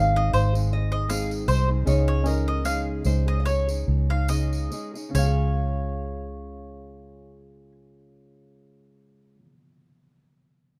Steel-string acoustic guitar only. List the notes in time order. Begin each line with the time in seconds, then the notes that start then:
Already playing: G#3 C4 D#4
0.00 G#4
0.15 G#3 C4 D#4 G#4
0.53 G#3 C4 D#4 G#4
0.91 G#3 C4 D#4 G#4
1.08 G#2 D#3 G#3 C4 D#4 G#4
1.46 G#3 C4 D#4 G#4
1.68 G#3 C4 D#4 G#4
1.85 C#3 G#3 C#4 D#4 G#4
2.24 G#3 C#4 D#4 G#4
2.64 C#3 G#3 C#4 D#4 G#4
3.03 G#3 C#4 D#4 G#4
3.26 C#4 D#4 G#4
3.67 C#4 D#4 G#4
4.09 C#4 D#4 G#4
4.29 C#3 G#3 C#4 D#4 G#4
4.70 G#3 C#4 D#4 G#4
4.94 C#4 D#4 G#4
5.09 C#3
5.15 G#3
5.19 C#4 F4
5.27 G#4